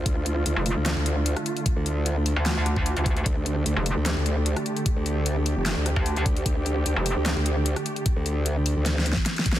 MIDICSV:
0, 0, Header, 1, 5, 480
1, 0, Start_track
1, 0, Key_signature, -1, "minor"
1, 0, Tempo, 400000
1, 71, Time_signature, 4, 2, 24, 8
1, 11514, End_track
2, 0, Start_track
2, 0, Title_t, "String section"
2, 0, Program_c, 0, 48
2, 0, Note_on_c, 0, 50, 83
2, 0, Note_on_c, 0, 57, 76
2, 0, Note_on_c, 0, 65, 91
2, 3888, Note_off_c, 0, 65, 0
2, 3910, Note_on_c, 0, 67, 90
2, 11514, Note_off_c, 0, 50, 0
2, 11514, Note_off_c, 0, 57, 0
2, 11514, Note_off_c, 0, 67, 0
2, 11514, End_track
3, 0, Start_track
3, 0, Title_t, "Wobble bass"
3, 0, Program_c, 1, 39
3, 71, Note_on_c, 1, 38, 98
3, 533, Note_off_c, 1, 38, 0
3, 550, Note_on_c, 1, 38, 96
3, 657, Note_off_c, 1, 38, 0
3, 917, Note_on_c, 1, 38, 93
3, 1137, Note_off_c, 1, 38, 0
3, 1157, Note_on_c, 1, 38, 96
3, 1617, Note_off_c, 1, 38, 0
3, 2117, Note_on_c, 1, 38, 96
3, 2817, Note_off_c, 1, 38, 0
3, 3911, Note_on_c, 1, 38, 101
3, 4373, Note_off_c, 1, 38, 0
3, 4391, Note_on_c, 1, 38, 95
3, 4497, Note_off_c, 1, 38, 0
3, 4758, Note_on_c, 1, 38, 96
3, 4977, Note_off_c, 1, 38, 0
3, 4998, Note_on_c, 1, 38, 99
3, 5457, Note_off_c, 1, 38, 0
3, 5957, Note_on_c, 1, 38, 99
3, 6657, Note_off_c, 1, 38, 0
3, 6678, Note_on_c, 1, 29, 94
3, 6897, Note_off_c, 1, 29, 0
3, 6917, Note_on_c, 1, 38, 99
3, 7137, Note_off_c, 1, 38, 0
3, 7510, Note_on_c, 1, 38, 98
3, 7732, Note_off_c, 1, 38, 0
3, 7750, Note_on_c, 1, 38, 98
3, 8212, Note_off_c, 1, 38, 0
3, 8230, Note_on_c, 1, 38, 96
3, 8337, Note_off_c, 1, 38, 0
3, 8597, Note_on_c, 1, 38, 97
3, 8817, Note_off_c, 1, 38, 0
3, 8838, Note_on_c, 1, 38, 101
3, 9297, Note_off_c, 1, 38, 0
3, 9797, Note_on_c, 1, 38, 98
3, 10497, Note_off_c, 1, 38, 0
3, 10518, Note_on_c, 1, 38, 96
3, 10977, Note_off_c, 1, 38, 0
3, 11478, Note_on_c, 1, 36, 100
3, 11514, Note_off_c, 1, 36, 0
3, 11514, End_track
4, 0, Start_track
4, 0, Title_t, "Wobble bass"
4, 0, Program_c, 2, 39
4, 677, Note_on_c, 2, 29, 99
4, 897, Note_off_c, 2, 29, 0
4, 2837, Note_on_c, 2, 38, 102
4, 3537, Note_off_c, 2, 38, 0
4, 3557, Note_on_c, 2, 38, 96
4, 3892, Note_off_c, 2, 38, 0
4, 4517, Note_on_c, 2, 29, 96
4, 4737, Note_off_c, 2, 29, 0
4, 7157, Note_on_c, 2, 38, 100
4, 7492, Note_off_c, 2, 38, 0
4, 8357, Note_on_c, 2, 29, 100
4, 8577, Note_off_c, 2, 29, 0
4, 11514, End_track
5, 0, Start_track
5, 0, Title_t, "Drums"
5, 71, Note_on_c, 9, 36, 127
5, 71, Note_on_c, 9, 42, 81
5, 191, Note_off_c, 9, 36, 0
5, 191, Note_off_c, 9, 42, 0
5, 311, Note_on_c, 9, 42, 54
5, 431, Note_off_c, 9, 42, 0
5, 550, Note_on_c, 9, 42, 80
5, 670, Note_off_c, 9, 42, 0
5, 790, Note_on_c, 9, 46, 86
5, 910, Note_off_c, 9, 46, 0
5, 1031, Note_on_c, 9, 38, 127
5, 1031, Note_on_c, 9, 39, 94
5, 1031, Note_on_c, 9, 42, 79
5, 1151, Note_off_c, 9, 38, 0
5, 1151, Note_off_c, 9, 39, 0
5, 1151, Note_off_c, 9, 42, 0
5, 1271, Note_on_c, 9, 42, 64
5, 1391, Note_off_c, 9, 42, 0
5, 1511, Note_on_c, 9, 42, 81
5, 1631, Note_off_c, 9, 42, 0
5, 1638, Note_on_c, 9, 37, 63
5, 1638, Note_on_c, 9, 42, 36
5, 1751, Note_off_c, 9, 42, 0
5, 1751, Note_on_c, 9, 42, 51
5, 1758, Note_off_c, 9, 37, 0
5, 1871, Note_off_c, 9, 42, 0
5, 1878, Note_on_c, 9, 42, 35
5, 1991, Note_off_c, 9, 42, 0
5, 1991, Note_on_c, 9, 36, 124
5, 1991, Note_on_c, 9, 42, 78
5, 2111, Note_off_c, 9, 36, 0
5, 2111, Note_off_c, 9, 42, 0
5, 2231, Note_on_c, 9, 42, 50
5, 2351, Note_off_c, 9, 42, 0
5, 2471, Note_on_c, 9, 42, 78
5, 2591, Note_off_c, 9, 42, 0
5, 2711, Note_on_c, 9, 46, 88
5, 2831, Note_off_c, 9, 46, 0
5, 2951, Note_on_c, 9, 38, 127
5, 2951, Note_on_c, 9, 39, 91
5, 2951, Note_on_c, 9, 42, 77
5, 3071, Note_off_c, 9, 38, 0
5, 3071, Note_off_c, 9, 39, 0
5, 3071, Note_off_c, 9, 42, 0
5, 3192, Note_on_c, 9, 37, 59
5, 3192, Note_on_c, 9, 42, 63
5, 3312, Note_off_c, 9, 37, 0
5, 3312, Note_off_c, 9, 42, 0
5, 3318, Note_on_c, 9, 36, 60
5, 3432, Note_on_c, 9, 42, 77
5, 3438, Note_off_c, 9, 36, 0
5, 3552, Note_off_c, 9, 42, 0
5, 3558, Note_on_c, 9, 42, 33
5, 3671, Note_on_c, 9, 36, 109
5, 3672, Note_off_c, 9, 42, 0
5, 3672, Note_on_c, 9, 42, 50
5, 3791, Note_off_c, 9, 36, 0
5, 3792, Note_off_c, 9, 42, 0
5, 3798, Note_on_c, 9, 42, 36
5, 3911, Note_on_c, 9, 36, 114
5, 3912, Note_off_c, 9, 42, 0
5, 3912, Note_on_c, 9, 42, 76
5, 4031, Note_off_c, 9, 36, 0
5, 4032, Note_off_c, 9, 42, 0
5, 4152, Note_on_c, 9, 42, 50
5, 4272, Note_off_c, 9, 42, 0
5, 4391, Note_on_c, 9, 42, 78
5, 4511, Note_off_c, 9, 42, 0
5, 4632, Note_on_c, 9, 46, 93
5, 4752, Note_off_c, 9, 46, 0
5, 4871, Note_on_c, 9, 38, 117
5, 4871, Note_on_c, 9, 39, 88
5, 4871, Note_on_c, 9, 42, 78
5, 4991, Note_off_c, 9, 38, 0
5, 4991, Note_off_c, 9, 39, 0
5, 4991, Note_off_c, 9, 42, 0
5, 5111, Note_on_c, 9, 42, 63
5, 5231, Note_off_c, 9, 42, 0
5, 5351, Note_on_c, 9, 42, 80
5, 5471, Note_off_c, 9, 42, 0
5, 5478, Note_on_c, 9, 37, 65
5, 5478, Note_on_c, 9, 42, 35
5, 5591, Note_off_c, 9, 42, 0
5, 5591, Note_on_c, 9, 42, 50
5, 5598, Note_off_c, 9, 37, 0
5, 5711, Note_off_c, 9, 42, 0
5, 5718, Note_on_c, 9, 42, 35
5, 5831, Note_off_c, 9, 42, 0
5, 5831, Note_on_c, 9, 36, 117
5, 5831, Note_on_c, 9, 42, 81
5, 5951, Note_off_c, 9, 36, 0
5, 5951, Note_off_c, 9, 42, 0
5, 6071, Note_on_c, 9, 42, 54
5, 6191, Note_off_c, 9, 42, 0
5, 6311, Note_on_c, 9, 42, 80
5, 6431, Note_off_c, 9, 42, 0
5, 6551, Note_on_c, 9, 46, 96
5, 6671, Note_off_c, 9, 46, 0
5, 6791, Note_on_c, 9, 38, 117
5, 6791, Note_on_c, 9, 39, 87
5, 6791, Note_on_c, 9, 42, 82
5, 6911, Note_off_c, 9, 38, 0
5, 6911, Note_off_c, 9, 39, 0
5, 6911, Note_off_c, 9, 42, 0
5, 7031, Note_on_c, 9, 37, 55
5, 7031, Note_on_c, 9, 42, 67
5, 7151, Note_off_c, 9, 37, 0
5, 7151, Note_off_c, 9, 42, 0
5, 7157, Note_on_c, 9, 36, 58
5, 7271, Note_on_c, 9, 42, 81
5, 7277, Note_off_c, 9, 36, 0
5, 7391, Note_off_c, 9, 42, 0
5, 7397, Note_on_c, 9, 42, 37
5, 7510, Note_on_c, 9, 36, 105
5, 7511, Note_off_c, 9, 42, 0
5, 7511, Note_on_c, 9, 42, 52
5, 7630, Note_off_c, 9, 36, 0
5, 7631, Note_off_c, 9, 42, 0
5, 7638, Note_on_c, 9, 42, 38
5, 7750, Note_on_c, 9, 36, 109
5, 7751, Note_off_c, 9, 42, 0
5, 7751, Note_on_c, 9, 42, 86
5, 7870, Note_off_c, 9, 36, 0
5, 7871, Note_off_c, 9, 42, 0
5, 7991, Note_on_c, 9, 42, 54
5, 8111, Note_off_c, 9, 42, 0
5, 8230, Note_on_c, 9, 42, 85
5, 8350, Note_off_c, 9, 42, 0
5, 8470, Note_on_c, 9, 46, 99
5, 8590, Note_off_c, 9, 46, 0
5, 8710, Note_on_c, 9, 38, 116
5, 8710, Note_on_c, 9, 39, 93
5, 8710, Note_on_c, 9, 42, 87
5, 8830, Note_off_c, 9, 38, 0
5, 8830, Note_off_c, 9, 39, 0
5, 8830, Note_off_c, 9, 42, 0
5, 8950, Note_on_c, 9, 42, 66
5, 9070, Note_off_c, 9, 42, 0
5, 9190, Note_on_c, 9, 42, 86
5, 9310, Note_off_c, 9, 42, 0
5, 9317, Note_on_c, 9, 37, 59
5, 9317, Note_on_c, 9, 42, 38
5, 9430, Note_off_c, 9, 42, 0
5, 9430, Note_on_c, 9, 42, 56
5, 9437, Note_off_c, 9, 37, 0
5, 9550, Note_off_c, 9, 42, 0
5, 9557, Note_on_c, 9, 42, 37
5, 9669, Note_off_c, 9, 42, 0
5, 9669, Note_on_c, 9, 42, 86
5, 9670, Note_on_c, 9, 36, 116
5, 9789, Note_off_c, 9, 42, 0
5, 9790, Note_off_c, 9, 36, 0
5, 9910, Note_on_c, 9, 42, 56
5, 10030, Note_off_c, 9, 42, 0
5, 10149, Note_on_c, 9, 42, 86
5, 10269, Note_off_c, 9, 42, 0
5, 10390, Note_on_c, 9, 46, 96
5, 10510, Note_off_c, 9, 46, 0
5, 10630, Note_on_c, 9, 38, 72
5, 10630, Note_on_c, 9, 42, 88
5, 10750, Note_off_c, 9, 38, 0
5, 10750, Note_off_c, 9, 42, 0
5, 10791, Note_on_c, 9, 38, 79
5, 10871, Note_on_c, 9, 42, 67
5, 10911, Note_off_c, 9, 38, 0
5, 10950, Note_on_c, 9, 38, 87
5, 10991, Note_off_c, 9, 42, 0
5, 10997, Note_on_c, 9, 36, 58
5, 11070, Note_off_c, 9, 38, 0
5, 11110, Note_on_c, 9, 38, 96
5, 11110, Note_on_c, 9, 42, 84
5, 11117, Note_off_c, 9, 36, 0
5, 11230, Note_off_c, 9, 38, 0
5, 11230, Note_off_c, 9, 42, 0
5, 11237, Note_on_c, 9, 42, 40
5, 11269, Note_on_c, 9, 38, 96
5, 11350, Note_off_c, 9, 42, 0
5, 11350, Note_on_c, 9, 36, 104
5, 11350, Note_on_c, 9, 42, 59
5, 11389, Note_off_c, 9, 38, 0
5, 11429, Note_on_c, 9, 38, 106
5, 11470, Note_off_c, 9, 36, 0
5, 11470, Note_off_c, 9, 42, 0
5, 11477, Note_on_c, 9, 42, 40
5, 11514, Note_off_c, 9, 38, 0
5, 11514, Note_off_c, 9, 42, 0
5, 11514, End_track
0, 0, End_of_file